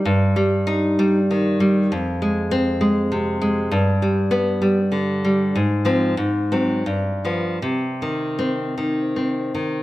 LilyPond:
\new Staff \with { instrumentName = "Nylon-string guitar" } { \clef bass \time 3/4 \key c \minor \tempo 4 = 96 << { r4 ees'4 r4 | r4 c'4 r4 | r4 b4 r4 | r8 c'8 r8 c'8 r8 b8 |
r4 c'4 r4 | } \\ { g,8 g4 g8 ees8 g8 | f,8 aes4 aes8 c8 aes8 | g,8 g4 g8 d8 g8 | aes,8 f8 aes,8 ges8 g,8 f8 |
c8 ees4 ees8 c'8 ees8 | } >> }